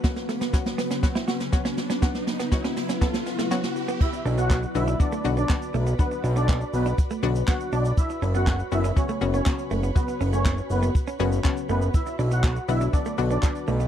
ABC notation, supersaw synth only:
X:1
M:4/4
L:1/16
Q:1/4=121
K:Bm
V:1 name="Supersaw synth"
z16 | z16 | [Ee] z2 [Ff]2 z [Ee] z [Dd] z2 [Dd]2 z3 | [B,B] z2 [Dd]2 z [B,B] z4 z [Ff] z [Dd] z |
[Ee] z2 [Ff]2 z [Ee] z [Cc] z2 [Cc]2 z3 | [B,B] z2 [Cc]2 z [B,B] z6 z [B,B] z | [Ee] z2 [Ff]2 z [Ee] z [Dd] z2 [Dd]2 z3 |]